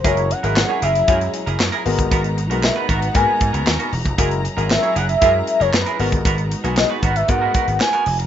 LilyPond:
<<
  \new Staff \with { instrumentName = "Soft synth lead" } { \time 4/4 \key gis \minor \tempo 4 = 116 cis''8 fis''4 e''4 r4. | r4 e''8 fis''8 gis''4. r8 | r4 e''8 fis''16 e''8. e''16 cis''16 b'8. r16 | r4 dis''8 fis''16 e''16 fis''4 gis''8. r16 | }
  \new Staff \with { instrumentName = "Clean electric guitar" } { \time 4/4 \key gis \minor <e' gis' ais'>16 r8 <e' gis' ais'>16 r16 <e' gis' cis''>16 <e' gis' ais'>16 r16 <e' gis' ais'>16 r8 <e' gis' ais'>16 r16 <e' gis' ais'>16 r8 | <b fis' ais'>16 r8 <b fis' ais'>16 r16 <b fis' b'>16 <b fis' ais'>16 r16 <b fis' ais'>16 r8 <b fis' ais'>16 r16 <b fis' ais'>16 r8 | <e' gis' ais'>16 r8 <e' gis' ais'>16 r16 <e' gis' cis''>16 <e' gis' ais'>16 r16 <e' gis' ais'>16 r8 <e' gis' ais'>16 r16 <e' gis' ais'>16 <b fis' ais'>16 r16 | <b fis' ais'>16 r8 <b fis' ais'>16 r16 <b fis' b'>16 <b fis' ais'>16 r8 <b fis' ais'>16 <b fis' ais'>16 r8 <b fis' ais'>16 r8 | }
  \new Staff \with { instrumentName = "Grand piano" } { \time 4/4 \key gis \minor <gis e' fis' ais'>8 r16 <gis e' fis' ais'>8. r8 <gis e' fis' cis''>4 r8 <gis b fis' ais'>8~ | <gis b fis' ais'>8 r16 <gis b fis' ais'>8. r8 <gis ais b fis' ais'>4 r4 | <gis e' fis' ais'>8 r16 <gis e' fis' ais'>8. r8 <gis e' fis' ais'>4 r8 <gis b fis' ais'>8~ | <gis b fis' ais'>8 r16 <gis b fis' gis'>8. r8 <gis b fis' ais'>4 r4 | }
  \new Staff \with { instrumentName = "String section" } { \time 4/4 \key gis \minor <fis cis' e' gis' ais''>2.~ <fis cis' e' gis' ais''>8 <gis b dis' fis'>8~ | <gis b dis' fis'>1 | <fis cis' e' gis'>2.~ <fis cis' e' gis'>8 <gis b dis' fis'>8~ | <gis b dis' fis'>1 | }
  \new Staff \with { instrumentName = "Slap bass" } { \clef bass \time 4/4 \key gis \minor fis,,8. gis,,8 r16 fis,,8 fis,8 r16 fis,,16 fis,16 r16 gis,,16 g,,16 | gis,,8. b,,8 r16 gis,,8 gis,16 r16 gis,16 cis,16 dis,16 r16 e,,16 eis,,16 | fis,,8. gis,,8 r16 fis,,8 fis,8 r16 fis,,16 fis,16 r16 gis,,16 g,,16 | gis,,8. b,,8 r16 gis,,8 gis,8 r16 gis,,16 r8 eis,,8 | }
  \new DrumStaff \with { instrumentName = "Drums" } \drummode { \time 4/4 <hh bd>16 hh16 hh16 hh16 <hc sn>8 hh16 hh16 <hh bd>16 hh16 hh16 hh16 <hc sn>16 hh16 hho16 <hh bd>16 | <hh bd>16 hh16 hh16 hh16 <hc sn>8 <hh bd>16 hh16 <hh bd>8 <hh bd>16 hh16 <hc sn>16 hh16 hho16 <hh bd>16 | <hh bd>16 hh16 hh16 hh16 <hc sn>16 hh16 hh16 hh16 <hh bd>8 hh16 hh16 <hc sn>16 hh16 hho16 <hh bd>16 | <hh bd>16 hh16 hh16 hh16 <hc sn>8 <hh bd>16 hh16 <hh bd>8 <hh bd>16 hh16 <hc sn>16 hh16 hho16 hh16 | }
>>